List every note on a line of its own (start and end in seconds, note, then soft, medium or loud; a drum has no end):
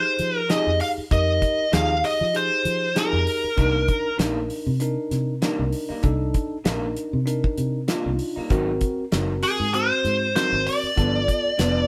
0.00 0.41 D#4 medium
0.00 0.41 G4 medium
0.00 0.41 G#4 medium
0.00 0.37 C5 medium
0.19 0.48 F3 medium
0.19 closed hi-hat medium
0.37 0.52 A#4 medium
0.49 0.69 F3 medium
0.49 0.69 C4 medium
0.49 1.03 D#4 medium
0.49 0.70 D#4 medium
0.49 1.03 G4 medium
0.49 0.70 G#4 medium
0.49 1.03 G#4 medium
0.49 0.81 D#5 medium
0.49 snare loud
0.49 closed hi-hat medium
0.67 0.79 F2 medium
0.80 0.89 F5 medium
0.80 open hi-hat medium
0.98 muted fingered electric bass stroke soft
1.11 1.40 F2 medium
1.11 1.64 D#4 medium
1.11 1.64 G4 medium
1.11 1.65 A#4 medium
1.11 1.74 D#5 loud
1.11 kick medium
1.11 closed hi-hat medium
1.42 kick medium
1.42 closed hi-hat medium
1.72 2.01 D#2 medium
1.72 1.92 F3 medium
1.72 1.93 C4 medium
1.72 2.25 D#4 medium
1.72 1.93 D#4 medium
1.72 2.26 G4 medium
1.72 1.93 G#4 medium
1.72 2.26 G#4 medium
1.72 2.05 F5 medium
1.72 snare loud
1.72 closed hi-hat medium
2.04 2.36 D#5 medium
2.04 open hi-hat medium
2.21 2.49 F3 loud
2.34 2.87 D#4 medium
2.34 2.87 G4 medium
2.34 2.88 G#4 medium
2.34 2.98 C5 loud
2.34 closed hi-hat medium
2.65 2.94 F3 medium
2.65 closed hi-hat medium
2.95 3.16 F3 medium
2.95 3.16 C4 medium
2.95 3.48 D#4 medium
2.95 3.16 D#4 medium
2.95 3.49 G4 medium
2.95 3.49 G#4 medium
2.95 3.17 G#4 medium
2.95 4.16 A#4 medium
2.95 snare medium
2.95 closed hi-hat medium
3.13 3.26 F2 medium
3.27 open hi-hat medium
3.44 muted fingered electric bass stroke soft
3.57 3.86 C2 medium
3.57 3.77 C3 medium
3.57 3.78 G3 medium
3.57 3.78 A#3 medium
3.57 4.10 D4 medium
3.57 4.11 D#4 medium
3.57 3.78 D#4 medium
3.57 4.11 A#4 medium
3.57 kick medium
3.57 closed hi-hat medium
3.88 kick medium
3.88 closed hi-hat medium
4.18 4.48 A#1 medium
4.18 4.39 C3 medium
4.18 4.39 G3 medium
4.18 4.39 A#3 medium
4.18 4.72 D4 medium
4.18 4.72 D#4 medium
4.18 4.40 D#4 medium
4.18 4.72 A#4 medium
4.18 snare loud
4.18 closed hi-hat medium
4.50 open hi-hat medium
4.67 4.95 C3 medium
4.80 5.33 D4 medium
4.80 5.34 D#4 medium
4.80 5.34 A#4 medium
4.80 closed hi-hat medium
5.11 5.40 C3 medium
5.11 snare soft
5.11 closed hi-hat medium
5.42 5.62 C3 medium
5.42 5.62 G3 medium
5.42 5.63 A#3 medium
5.42 5.95 D4 medium
5.42 5.96 D#4 medium
5.42 5.63 D#4 medium
5.42 5.96 A#4 medium
5.42 snare loud
5.42 closed hi-hat medium
5.59 5.72 C2 medium
5.72 open hi-hat medium
5.89 6.08 G3 soft
5.89 6.08 A#3 soft
5.89 6.07 D#4 medium
5.89 muted fingered electric bass stroke soft
6.03 6.33 C2 medium
6.03 6.56 D4 loud
6.03 6.57 D#4 medium
6.03 6.57 A4 loud
6.03 kick loud
6.03 closed hi-hat medium
6.34 kick medium
6.34 closed hi-hat medium
6.64 6.94 A#1 medium
6.64 6.85 C3 medium
6.64 6.85 G3 medium
6.64 6.86 A#3 loud
6.64 7.18 D4 medium
6.64 7.19 D#4 medium
6.64 6.86 D#4 loud
6.64 7.19 A#4 medium
6.64 snare loud
6.64 closed hi-hat medium
6.97 closed hi-hat medium
7.13 7.42 C3 medium
7.26 7.80 D4 medium
7.26 7.80 D#4 medium
7.26 7.80 A#4 medium
7.26 closed hi-hat medium
7.44 kick medium
7.58 7.87 C3 medium
7.58 closed hi-hat medium
7.88 8.08 C3 medium
7.88 8.09 G3 medium
7.88 8.09 A#3 medium
7.88 8.41 D4 medium
7.88 8.42 D#4 medium
7.88 8.09 D#4 medium
7.88 8.42 F4 medium
7.88 snare medium
7.88 closed hi-hat medium
8.06 8.19 C2 medium
8.19 open hi-hat medium
8.36 8.50 G3 soft
8.36 8.51 A#3 medium
8.36 8.50 D#4 medium
8.36 muted fingered electric bass stroke soft
8.50 8.79 G#1 medium
8.50 8.70 G#2 medium
8.50 8.70 F#3 medium
8.50 9.03 C4 medium
8.50 8.71 C4 medium
8.50 8.71 D#4 loud
8.50 9.04 F#4 medium
8.50 9.04 A#4 loud
8.50 kick medium
8.50 closed hi-hat medium
8.81 kick medium
8.81 closed hi-hat medium
9.12 9.41 F#1 medium
9.12 9.32 G#2 medium
9.12 9.32 F#3 medium
9.12 9.65 C4 medium
9.12 9.32 C4 medium
9.12 9.33 D#4 medium
9.12 9.66 F#4 medium
9.12 9.66 A#4 medium
9.12 snare loud
9.12 closed hi-hat medium
9.43 9.74 G#4 medium
9.43 open hi-hat medium
9.60 9.89 G#2 medium
9.73 10.27 C4 medium
9.73 10.27 F#4 medium
9.73 10.35 C5 loud
9.73 10.27 C5 medium
9.73 closed hi-hat medium
10.05 10.33 G#2 medium
10.05 snare soft
10.05 closed hi-hat medium
10.35 10.55 G#2 medium
10.35 10.56 F#3 medium
10.35 10.88 C4 medium
10.35 10.56 C4 medium
10.35 10.56 D#4 medium
10.35 10.89 F#4 medium
10.35 10.89 A#4 medium
10.35 10.68 C5 loud
10.35 snare medium
10.35 closed hi-hat medium
10.52 10.65 G#1 medium
10.67 11.87 D5 loud
10.67 open hi-hat medium
10.83 muted fingered electric bass stroke soft
10.96 11.26 G1 medium
10.96 11.17 G2 medium
10.96 11.17 F3 medium
10.96 11.50 B3 medium
10.96 11.17 B3 medium
10.96 11.18 D4 medium
10.96 11.50 F4 medium
10.96 11.51 A4 medium
10.96 kick medium
10.96 closed hi-hat medium
11.28 kick medium
11.28 closed hi-hat medium
11.58 11.87 F1 medium
11.58 11.79 G2 medium
11.58 11.79 F3 medium
11.58 11.87 B3 medium
11.58 11.79 B3 loud
11.58 11.79 D4 loud
11.58 11.87 F4 medium
11.58 11.87 B4 medium
11.58 snare loud
11.58 closed hi-hat medium